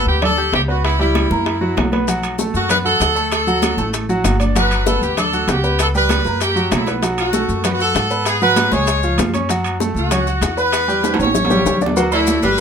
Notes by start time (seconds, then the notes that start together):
Already playing: B3 B4 B5
0.06 D2 G4, high conga
0.22 D4 A4 D5 D6, high bongo, high conga, low conga, high timbale
0.38 G4 G5 G6, high conga
0.52 C#2 G4, high bongo, low bongo, high conga, high timbale, low timbale
0.68 B3 F#4 B4 B5, high conga
0.84 E4, high bongo, high conga, high timbale
0.99 G3 E4 G4 G5, high conga
1.15 high bongo, high conga, high timbale
1.31 F#2 A#3 A#4 A#5, high bongo, high conga
1.46 high bongo, high conga, high timbale
1.61 F#3 F#4 F#5, high bongo, high conga
1.77 B1, high bongo, low bongo, high conga, high timbale, low timbale
1.92 B3 B4 B5, high bongo, high conga, high timbale
2.08 F#3 F#4 F#5, high bongo, high conga, high timbale, maracas
2.23 high conga, high timbale, maracas
2.39 A3 A4 A5, high bongo, high conga, maracas
2.54 F#2 F#4, high conga, maracas
2.69 B3 B4 B5, high bongo, high conga, low conga, high timbale, maracas
2.84 F#4 A4 F#5 F#6, high conga, low conga, maracas
3.00 D2, high bongo, low bongo, high conga, high timbale, maracas
3.16 A3 A4 A5, high conga, maracas
3.31 A4, high bongo, high conga, high timbale, maracas
3.47 F#3 F#4 F#5, high conga, maracas
3.62 high bongo, high conga, high timbale, maracas
3.77 A1 A3 A4 A5, high bongo, high conga, maracas
3.94 high bongo, high timbale, maracas
4.09 F#3 F#4 F#5, high bongo, maracas
4.24 G1, high bongo, low bongo, high conga, high timbale, low timbale, maracas
4.40 D4 D5 D6, high bongo, high conga, high timbale, maracas
4.55 F#3 F#4 B4 F#5, high bongo, high conga, high timbale, maracas
4.71 high timbale, maracas
4.86 B3 A4 B4 B5, high bongo, high conga, maracas
5.01 D2 G4, high conga, maracas
5.17 D4 A4 D5 D6, high bongo, high conga, low conga, high timbale, maracas
5.33 F#4 F#5 F#6, high conga, low conga, maracas
5.47 C#2 G4, high bongo, low bongo, high conga, high timbale, low timbale, maracas
5.63 B3 B4 B5, high conga, maracas
5.79 A4, high bongo, high conga, high timbale, maracas
5.94 G3 G4 B4 G5, high conga, maracas
6.09 high bongo, high conga, high timbale, maracas
6.25 F#2 A#3 A#4 A#5, high bongo, high conga, maracas
6.40 G4, high bongo, high conga, high timbale, maracas
6.56 F#3 F#4 F#5, high bongo, high conga, maracas
6.71 B1 E4, high bongo, low bongo, high conga, high timbale, low timbale, maracas
6.87 B3 B4 B5, high bongo, high conga, high timbale, maracas
7.02 F#3 F#4 F#5, high bongo, high conga, high timbale, maracas
7.18 F#4, high conga, high timbale, maracas
7.33 A3 A4 A5, high bongo, high conga, maracas
7.49 F#2, high conga, maracas
7.64 B3 F#4 B4 B5, high bongo, high conga, low conga, high timbale, maracas
7.69 G4
7.74 F#4
7.80 F#4 A4 F#5 F#6, high conga, maracas
7.95 G#2, high bongo, low bongo, high timbale, maracas
8.10 B3 B4 B5, high conga, maracas
8.25 G#4, high bongo, high conga, high timbale, maracas
8.41 F#3 F#4 B4 F#5, high conga, maracas
8.56 high bongo, high conga, high timbale, maracas
8.72 C#2 G#3 G#4 C#5 G#5, high bongo, high conga, maracas
8.87 high bongo, high conga, high timbale, maracas
9.03 F3 F4 F5, high bongo, high conga, maracas
9.18 F#2, high bongo, low bongo, high conga, high timbale, low timbale, maracas
9.34 C#4 C#5 C#6, high bongo, high conga, high timbale, maracas
9.49 F#3 F#4 F#5, high bongo, high conga, high timbale, maracas
9.64 high conga, high timbale, maracas
9.80 A3 A4 A5, high bongo, high conga, maracas
9.94 C#2 F#4, high conga, maracas
10.11 C#4 C#5 C#6, high bongo, high conga, low conga, high timbale, maracas
10.27 F#4 F#5 F#6, high conga, maracas
10.41 E2, high bongo, low bongo, high timbale, maracas
10.57 B3 B4 B5, high conga, maracas
10.72 high bongo, high conga, high timbale, maracas
10.88 G3 G4 G5, high conga, maracas
11.04 high bongo, high conga, high timbale, maracas
11.14 high conga, high timbale
11.19 A1 C#4 C#5 C#6, high bongo, maracas
11.24 high conga, low timbale
11.35 high bongo, low conga, maracas
11.45 low conga, low timbale
11.50 G3 G4 G5, low bongo, maracas
11.55 low conga, low timbale
11.65 D2, low bongo, maracas
11.76 low conga
11.81 D4 D5 D6, low bongo, maracas
11.86 low conga, low timbale
11.97 F#3 F#4 F#5, cowbell, low agogo, maracas
12.12 A3 E4 A4 D5, cowbell, high conga, low agogo, maracas
12.27 cowbell, high conga, low timbale, maracas
12.42 G1 G3 G4 B4 G5, cowbell, high conga, low agogo, maracas